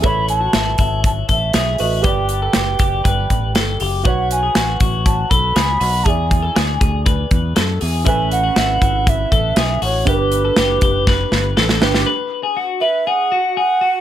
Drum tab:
HH |x-x-x-x-x-x-x-o-|x-x-x-x-x-x-x-o-|x-x-x-x-x-x-x-o-|x-x-x-x-x-x-x-o-|
SD |----o-------o---|----o-------o---|----o-------o---|----o-------o---|
BD |o-----o-o-o-----|o-----o-o-o-----|o-----o-o-o-----|o-o---o-o-o-----|

HH |x-x-x-x-x-x-x-o-|x-x-x-x---------|----------------|
SD |----o-------o---|----o---o-o-oooo|----------------|
BD |o-----o-o-o-----|o-----o-o-------|----------------|